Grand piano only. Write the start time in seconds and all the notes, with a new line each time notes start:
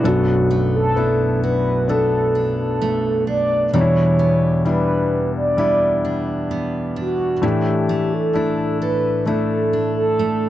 0.04 B1 F#2 B3 D4 A4
0.96 B3 D4 E4
1.88 B3 D4 A4
3.73 E2 B2 G3 D4 D#4
3.81 E4
4.65 G3 D4 E4
5.57 G3 D4 E4
7.42 A2 E3 A3 D4 E4
8.34 A3 D4 E4
9.26 A3 D4 E4